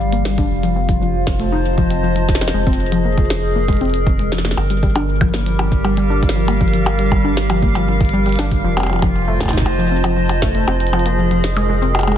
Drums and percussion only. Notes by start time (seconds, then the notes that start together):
0.13 closed hi-hat
0.25 snare
0.38 kick, closed hi-hat
0.63 closed hi-hat
0.89 kick, closed hi-hat
1.27 kick, snare
1.40 closed hi-hat
1.78 kick
1.90 closed hi-hat
2.16 closed hi-hat
2.29 kick, snare
2.35 snare
2.41 snare, closed hi-hat
2.48 snare
2.67 kick
2.73 closed hi-hat
2.92 closed hi-hat
3.18 kick, closed hi-hat
3.30 snare
3.68 kick, closed hi-hat
3.73 closed hi-hat
3.77 closed hi-hat
3.81 closed hi-hat
3.85 closed hi-hat
3.90 closed hi-hat
3.94 closed hi-hat
4.07 kick
4.19 closed hi-hat
4.32 snare
4.38 snare
4.45 snare
4.51 snare
4.57 percussion blips
4.70 closed hi-hat
4.83 kick
4.96 closed hi-hat, percussion blips
5.21 kick, percussion blips
5.34 snare
5.46 closed hi-hat
5.59 percussion blips
5.72 kick
5.85 percussion blips
5.97 closed hi-hat
6.23 kick, closed hi-hat
6.29 snare
6.48 closed hi-hat, percussion blips
6.61 kick
6.74 closed hi-hat
6.86 percussion blips
6.99 closed hi-hat
7.12 kick, percussion blips
7.37 snare
7.50 closed hi-hat, percussion blips
7.62 kick
7.75 percussion blips
8.01 kick, closed hi-hat
8.05 closed hi-hat
8.09 closed hi-hat
8.26 closed hi-hat
8.29 closed hi-hat
8.32 closed hi-hat
8.36 snare, closed hi-hat, percussion blips
8.51 kick, closed hi-hat
8.77 percussion blips
8.80 closed hi-hat, percussion blips
8.83 percussion blips
8.86 percussion blips
8.90 percussion blips
8.93 percussion blips
8.96 percussion blips
8.99 kick, closed hi-hat, percussion blips
9.02 percussion blips
9.40 kick, snare, percussion blips
9.43 kick, percussion blips
9.46 percussion blips
9.48 kick, snare, percussion blips
9.51 kick, closed hi-hat, percussion blips
9.57 kick, snare
9.62 kick
9.66 percussion blips
10.04 closed hi-hat, percussion blips
10.29 closed hi-hat, percussion blips
10.42 kick, snare
10.55 closed hi-hat
10.68 percussion blips
10.80 closed hi-hat
10.87 closed hi-hat
10.93 closed hi-hat, percussion blips
10.99 closed hi-hat
11.06 closed hi-hat
11.31 closed hi-hat
11.44 snare
11.57 closed hi-hat, percussion blips
11.95 percussion blips
11.99 closed hi-hat, percussion blips
12.03 percussion blips
12.07 percussion blips
12.12 percussion blips